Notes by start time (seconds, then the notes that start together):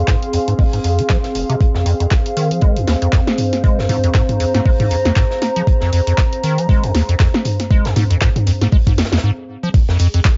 Already playing: C4 G#4 F5 C6
0.07 G#2, kick, snare, clap, closed hi-hat
0.22 closed hi-hat
0.33 F2, closed hi-hat, open hi-hat
0.48 G#2, closed hi-hat
0.59 G#3, kick, open hi-hat
0.73 G#2, closed hi-hat
0.84 F2, closed hi-hat, open hi-hat
0.99 F3, closed hi-hat
1.09 F3, kick, snare, clap, closed hi-hat
1.23 snare, closed hi-hat
1.35 F1, closed hi-hat, open hi-hat
1.50 C3, closed hi-hat
1.60 C5, kick, closed hi-hat
1.75 F2, snare
1.86 F2, closed hi-hat, open hi-hat
2.00 F2, closed hi-hat
2.11 kick, snare, clap, closed hi-hat
2.26 closed hi-hat
2.37 D#3, closed hi-hat, open hi-hat
2.51 F3, closed hi-hat
2.61 G#3, kick, closed hi-hat
2.77 F2, closed hi-hat
2.88 D#2, snare, closed hi-hat, open hi-hat
3.02 F2, closed hi-hat
3.13 F2, kick, snare, clap, closed hi-hat
3.27 snare
3.38 closed hi-hat, mid tom, open hi-hat
3.53 snare, closed hi-hat
3.64 G#3 A#5, kick, closed hi-hat
3.78 F2, snare
3.89 G#2, closed hi-hat, mid tom, open hi-hat
4.04 F2, closed hi-hat
4.14 G#2, kick, snare, clap, closed hi-hat
4.29 closed hi-hat, mid tom
4.40 F2, closed hi-hat, open hi-hat
4.54 G#2, snare, closed hi-hat
4.66 G#3, kick, open hi-hat
4.80 G#2, closed hi-hat, mid tom
4.91 F2, closed hi-hat, open hi-hat
5.05 F2, snare, closed hi-hat
5.16 G#2, kick, snare, clap, closed hi-hat
5.31 snare
5.42 snare, closed hi-hat, open hi-hat
5.56 F3, closed hi-hat
5.67 kick, closed hi-hat
5.81 F2, snare
5.92 F2, closed hi-hat, open hi-hat
6.07 F2, closed hi-hat
6.18 kick, snare, clap, closed hi-hat
6.33 closed hi-hat
6.43 D#3, closed hi-hat, open hi-hat
6.58 F3, closed hi-hat
6.69 G#3, kick, closed hi-hat
6.83 F2, closed hi-hat
6.94 D#2, snare, closed hi-hat, open hi-hat
7.09 F2, closed hi-hat
7.19 F2, kick, snare, clap, closed hi-hat
7.34 snare
7.45 closed hi-hat, mid tom, open hi-hat
7.60 snare, closed hi-hat
7.71 G#3, kick, closed hi-hat
7.85 F2, snare, closed hi-hat
7.96 G#2, snare, closed hi-hat, mid tom, open hi-hat
8.10 F2, closed hi-hat
8.21 G#2, kick, snare, clap, closed hi-hat
8.36 closed hi-hat, mid tom
8.46 F2, closed hi-hat, open hi-hat
8.61 G#2, snare, closed hi-hat
8.72 G#3, kick, open hi-hat
8.87 G#2, kick, closed hi-hat, mid tom
8.98 F2, snare, closed hi-hat, open hi-hat
9.04 snare, closed hi-hat
9.12 F2, snare, closed hi-hat
9.17 snare, closed hi-hat
9.23 G#2
9.63 F3
9.74 G#4, kick, closed hi-hat, ride
9.88 F2, snare
9.99 F2, closed hi-hat, open hi-hat, ride
10.14 F2, closed hi-hat
10.25 kick, snare, clap, closed hi-hat, ride